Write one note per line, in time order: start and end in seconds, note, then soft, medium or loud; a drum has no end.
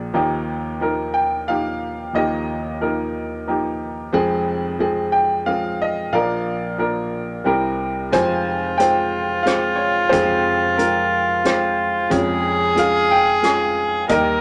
0.00 0.13 A#1 medium
0.00 0.16 A#1 medium
0.00 0.16 A#2 medium
0.00 0.14 F3 medium
0.00 0.14 A#3 medium
0.00 0.17 D4 medium
0.00 0.16 G#4 medium
0.13 2.10 D#2 medium
0.13 0.55 F3 medium
0.13 0.55 A#3 medium
0.13 0.55 D#4 medium
0.13 0.56 G4 medium
0.80 1.21 F3 medium
0.80 1.22 A#3 medium
0.80 1.22 D#4 medium
0.80 1.22 A#4 medium
1.14 1.45 G5 medium
1.48 1.88 F3 medium
1.48 1.89 A#3 soft
1.48 1.89 D#4 soft
1.48 1.89 G4 medium
1.48 2.16 F5 medium
2.13 4.09 D#2 medium
2.13 4.10 D#2 medium
2.13 2.55 F3 medium
2.13 2.55 A#3 medium
2.13 2.55 D#4 medium
2.13 2.56 G4 medium
2.13 2.83 D#5 medium
2.81 3.21 F3 medium
2.81 3.22 A#3 soft
2.81 3.22 D#4 medium
2.81 3.47 G4 soft
2.81 3.77 A#4 medium
3.47 3.88 F3 medium
3.47 3.88 A#3 medium
3.47 3.88 D#4 soft
3.47 3.88 G4 medium
4.13 6.09 F1 medium
4.13 6.09 F2 medium
4.13 4.54 F3 medium
4.13 4.54 G#3 medium
4.13 4.54 C4 medium
4.13 4.54 G#4 medium
4.79 5.20 F3 medium
4.79 5.21 G#3 medium
4.79 5.21 C4 medium
4.79 5.21 G#4 medium
5.12 5.44 G5 medium
5.46 5.87 F3 medium
5.46 5.87 G#3 soft
5.46 5.87 C4 medium
5.46 5.87 G#4 medium
5.46 5.81 F5 medium
5.82 6.15 D#5 medium
6.12 7.43 A#1 medium
6.12 7.42 A#1 medium
6.12 7.43 A#2 medium
6.12 6.53 F3 medium
6.12 6.53 A#3 medium
6.12 6.54 D4 medium
6.12 6.54 A#4 medium
6.12 7.43 D5 medium
6.12 7.42 F5 medium
6.78 7.19 F3 medium
6.78 7.20 A#3 medium
6.78 7.20 D4 medium
6.78 7.20 A#4 medium
7.44 8.09 C2 medium
7.44 8.12 C2 medium
7.44 8.09 C3 medium
7.44 7.86 G3 medium
7.44 7.86 C4 medium
7.44 7.87 E4 medium
7.44 7.87 A#4 medium
8.12 10.09 F1 medium
8.12 10.09 F2 medium
8.12 8.53 G#3 medium
8.12 8.53 C4 medium
8.12 8.53 F4 medium
8.12 12.12 F4 medium
8.12 8.54 C5 medium
8.12 8.75 G#5 loud
8.12 kick medium
8.12 closed hi-hat soft
8.78 9.20 G#3 medium
8.78 9.20 C4 soft
8.78 9.20 F4 medium
8.78 9.21 C5 medium
8.78 9.47 G5 medium
8.78 closed hi-hat soft
9.43 9.87 G#3 medium
9.43 9.87 C4 medium
9.43 9.87 F4 soft
9.43 9.87 C5 medium
9.43 9.79 F5 medium
9.43 closed hi-hat soft
9.48 cross-stick medium
9.76 10.08 C#5 medium
10.09 12.07 F1 medium
10.09 12.07 F2 medium
10.09 10.52 G#3 medium
10.09 10.53 C4 medium
10.09 10.53 F4 medium
10.09 10.53 G#4 medium
10.09 10.73 C5 medium
10.09 kick medium
10.09 closed hi-hat soft
10.77 11.19 G#3 medium
10.77 11.19 C4 medium
10.77 11.20 F4 medium
10.77 11.40 A#4 medium
10.77 closed hi-hat soft
11.45 11.85 G#3 medium
11.45 11.85 C4 medium
11.45 11.86 F4 medium
11.45 11.86 C5 medium
11.45 cross-stick medium
11.45 closed hi-hat soft
12.10 14.06 F1 medium
12.10 14.06 F2 medium
12.10 12.51 G#3 medium
12.10 12.51 C#4 medium
12.10 12.13 F4 medium
12.10 14.09 G#4 loud
12.10 12.52 C#5 medium
12.10 kick medium
12.10 closed hi-hat soft
12.14 12.75 F4 medium
12.75 13.17 G#3 medium
12.75 13.17 C#4 medium
12.75 13.17 F4 medium
12.75 13.18 G#4 medium
12.75 13.09 F5 medium
12.75 closed hi-hat soft
13.11 13.45 G5 medium
13.42 13.84 G#3 medium
13.42 13.84 C#4 medium
13.42 13.84 F4 medium
13.42 13.84 G#4 medium
13.42 14.12 G#5 medium
13.42 cross-stick medium
13.42 closed hi-hat soft
14.09 14.41 D#2 medium
14.09 14.41 D#3 medium
14.09 14.41 G3 medium
14.09 14.41 A#3 medium
14.09 14.41 D#4 medium
14.09 14.41 G4 medium
14.09 14.41 A#4 loud
14.09 14.41 A#4 medium
14.09 14.41 D#5 medium
14.09 kick medium
14.09 closed hi-hat soft